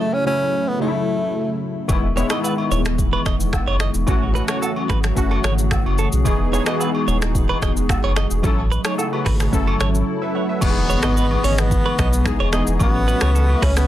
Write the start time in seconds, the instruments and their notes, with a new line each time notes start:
Already playing: synth keys C#3 F#3 A3 E4
0.00 tenor saxophone A3
0.14 tenor saxophone C#4
0.24 synth keys C#3 F#3 A3 E4, tenor saxophone C#4
0.68 tenor saxophone B3
0.79 synth keys C#3 F#3 A3 D#4, tenor saxophone A3
0.88 synth keys E4
1.88 sub bass E1, synth keys D#3 G#3 B3 E4, analog synth pad E3 G#3 B3 G#4, kick, high agogo, shaker
2.16 synth keys D#3 G#3 B3 E4, clean electric guitar C#5, shaker
2.30 synth keys G#3 B3 D#4 E4, clean electric guitar D#5, finger snap, cross-stick, high agogo, shaker
2.44 clean electric guitar B4, low woodblock, shaker
2.58 high agogo
2.71 sub bass D#1, clean electric guitar C#5, shaker
2.85 finger snap, cross-stick, shaker
2.98 kick, shaker
3.13 clean electric guitar B4, high agogo
3.26 sub bass E1, clean electric guitar D#5, finger snap, kick, cross-stick, shaker
3.40 shaker
3.53 finger snap, kick, cross-stick, low woodblock, shaker
3.67 sub bass F#1, clean electric guitar C#5, high agogo
3.80 clean electric guitar D#5, finger snap, cross-stick, shaker
3.94 sub bass E1, shaker
4.06 sub bass A1, analog synth pad C#3 F#3 A3, synth keys E3 A3 C#4 F#4, kick, high agogo, shaker
4.34 synth keys E3 A3 C#4 F#4, clean electric guitar B4, shaker
4.48 synth keys E3 A3 C#4 F#4, clean electric guitar C#5, finger snap, cross-stick, high agogo, shaker
4.62 clean electric guitar A4, low woodblock, shaker
4.76 high agogo
4.89 sub bass G#1, clean electric guitar B4, finger snap, kick, cross-stick, shaker
5.04 finger snap, cross-stick, shaker
5.15 sub bass F#1, synth keys E3 A3 C#4 F#4, kick, shaker
5.31 clean electric guitar A4, high agogo
5.44 sub bass G#1, clean electric guitar C#5, finger snap, cross-stick, shaker
5.58 shaker
5.71 finger snap, kick, cross-stick, low woodblock, shaker
5.85 sub bass F#1, high agogo
5.98 clean electric guitar A4, shaker
6.12 sub bass B1, shaker
6.25 sub bass E1, synth keys E3 B3 D#4 G#4, analog synth pad G#3 B3 D#4, kick, high agogo, shaker
6.52 synth keys E3 B3 D#4 G#4, clean electric guitar C#5, shaker
6.66 synth keys E3 B3 D#4 F#4, clean electric guitar D#5, finger snap, cross-stick, high agogo, shaker
6.75 synth keys G#4
6.80 clean electric guitar B4, low woodblock, shaker
6.95 high agogo
7.08 sub bass D#1, clean electric guitar C#5, shaker
7.22 finger snap, cross-stick, shaker
7.35 kick, shaker
7.49 clean electric guitar B4, high agogo
7.62 sub bass E1, clean electric guitar D#5, finger snap, kick, cross-stick, shaker
7.77 shaker
7.89 finger snap, kick, cross-stick, low woodblock, shaker
8.04 sub bass F#1, clean electric guitar C#5, high agogo
8.16 clean electric guitar D#5, finger snap, cross-stick, shaker
8.31 sub bass E1, shaker
8.43 sub bass A1, analog synth pad C#3 F#3 A3, synth keys F#3 C#4 E4 A4, kick, high agogo, shaker
8.72 clean electric guitar B4, shaker
8.84 synth keys D#4 G#4, clean electric guitar C#5, finger snap, cross-stick, high agogo, shaker
8.98 synth keys E4 A4, clean electric guitar A4, low woodblock, shaker
9.13 synth keys F#4 B4, high agogo
9.26 sub bass G#1, clean electric guitar B4, finger snap, kick, cross-stick, open hi-hat, shaker
9.40 synth keys G#4 C#5, finger snap, cross-stick, shaker
9.52 sub bass F#1, synth keys F#3 C#4 E4 A4, analog synth pad E4, kick, shaker
9.67 clean electric guitar A4, high agogo
9.80 sub bass G#1, clean electric guitar C#5, finger snap, cross-stick, shaker
9.95 shaker
10.22 synth keys B4 E5
10.35 synth keys C#5 F#5
10.49 synth keys B4 E5
10.61 sub bass E1, synth keys E3 G#3 B3 D#4 G4, analog synth pad E3 B3 G#4 D#5, tenor saxophone B3, kick, crash, impact, high agogo, shaker
10.70 synth keys G#4
10.90 clean electric guitar C#5, shaker
11.03 sub bass G#1, clean electric guitar D#5, finger snap, cross-stick, high agogo, shaker
11.17 clean electric guitar B4, shaker
11.31 high agogo
11.44 sub bass G#1, tenor saxophone C#4, clean electric guitar C#5, open hi-hat, shaker
11.58 tenor saxophone B3, finger snap, cross-stick, shaker
11.71 kick, shaker
11.86 clean electric guitar B4, high agogo
11.98 sub bass B1, clean electric guitar D#5, finger snap, kick, cross-stick, shaker
12.13 shaker
12.25 synth keys E3 G#3 B3 D#4 G#4, finger snap, kick, cross-stick, shaker
12.40 sub bass E1, clean electric guitar C#5, high agogo
12.52 synth keys E3 G#3 B3 D#4 G#4, clean electric guitar D#5, finger snap, cross-stick, shaker
12.67 sub bass E1, shaker
12.79 sub bass A1, synth keys E3 F#3 A3 C#4 F#4, tenor saxophone B3, analog synth pad C#4 F#4 A4 E5, kick, high agogo, shaker
13.08 clean electric guitar B4, shaker
13.21 sub bass C#2, clean electric guitar C#5, finger snap, cross-stick, high agogo, shaker
13.35 clean electric guitar A4, shaker
13.49 high agogo
13.62 sub bass C#2, tenor saxophone C#4, clean electric guitar B4, finger snap, kick, cross-stick, open hi-hat, shaker
13.76 tenor saxophone B3, finger snap, cross-stick, shaker